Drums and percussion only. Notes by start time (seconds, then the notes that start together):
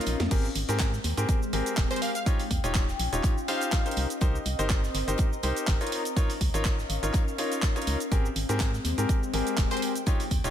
0.01 closed hi-hat
0.06 closed hi-hat, open hi-hat
0.20 snare, closed hi-hat
0.31 kick, closed hi-hat, crash, cabasa
0.45 cabasa
0.55 closed hi-hat, open hi-hat
0.69 closed hi-hat, cabasa
0.79 kick, snare, clap, closed hi-hat, cabasa
0.93 snare, cabasa
1.04 snare, closed hi-hat, open hi-hat
1.17 closed hi-hat, cabasa
1.29 kick, closed hi-hat, cabasa
1.43 cabasa
1.53 closed hi-hat, open hi-hat
1.66 closed hi-hat, cabasa
1.77 kick, snare, clap, closed hi-hat, cabasa
1.91 closed hi-hat, cabasa
1.96 closed hi-hat
2.02 closed hi-hat, open hi-hat
2.15 closed hi-hat, cabasa
2.26 kick, closed hi-hat, cabasa
2.40 open hi-hat, cabasa
2.51 kick, closed hi-hat, open hi-hat
2.64 closed hi-hat, cabasa
2.75 kick, snare, clap, closed hi-hat, cabasa
2.89 snare, cabasa
2.99 closed hi-hat, open hi-hat
3.13 closed hi-hat, cabasa
3.23 kick, clap, closed hi-hat, cabasa
3.38 cabasa
3.48 closed hi-hat, open hi-hat
3.61 closed hi-hat, cabasa
3.72 kick, snare, clap, closed hi-hat, cabasa
3.86 closed hi-hat, cabasa
3.91 closed hi-hat
3.96 closed hi-hat, open hi-hat
4.10 closed hi-hat, cabasa
4.21 kick, closed hi-hat, cabasa
4.35 cabasa
4.46 closed hi-hat, open hi-hat
4.59 closed hi-hat, cabasa
4.70 kick, snare, clap, closed hi-hat, cabasa
4.83 snare, cabasa
4.94 snare, closed hi-hat, open hi-hat
5.08 closed hi-hat, cabasa
5.18 kick, closed hi-hat, cabasa
5.33 cabasa
5.43 closed hi-hat, open hi-hat
5.57 closed hi-hat, cabasa
5.67 kick, snare, clap, closed hi-hat, cabasa
5.80 closed hi-hat, cabasa
5.87 closed hi-hat
5.92 closed hi-hat, open hi-hat
6.05 closed hi-hat, cabasa
6.17 kick, closed hi-hat, cabasa
6.30 open hi-hat, cabasa
6.41 kick, closed hi-hat, open hi-hat
6.54 closed hi-hat, cabasa
6.65 kick, snare, clap, closed hi-hat, cabasa
6.79 snare, cabasa
6.90 closed hi-hat, open hi-hat
7.03 closed hi-hat, cabasa
7.13 kick, clap, closed hi-hat, cabasa
7.28 cabasa
7.38 closed hi-hat, open hi-hat
7.52 closed hi-hat, cabasa
7.62 kick, snare, clap, closed hi-hat, cabasa
7.76 closed hi-hat, cabasa
7.82 closed hi-hat
7.87 closed hi-hat, open hi-hat
8.00 closed hi-hat, cabasa
8.12 kick, closed hi-hat, cabasa
8.26 cabasa
8.36 closed hi-hat, open hi-hat
8.49 closed hi-hat, cabasa
8.60 kick, snare, clap, closed hi-hat, cabasa
8.73 snare, cabasa
8.84 snare, closed hi-hat, open hi-hat
8.98 closed hi-hat, cabasa
9.09 kick, closed hi-hat, cabasa
9.23 cabasa
9.34 closed hi-hat, open hi-hat
9.47 closed hi-hat, cabasa
9.57 kick, snare, clap, closed hi-hat, cabasa
9.71 closed hi-hat, cabasa
9.77 closed hi-hat
9.82 closed hi-hat, open hi-hat
9.95 closed hi-hat, cabasa
10.06 kick, closed hi-hat, cabasa
10.20 open hi-hat, cabasa
10.31 kick, closed hi-hat, open hi-hat
10.44 closed hi-hat, cabasa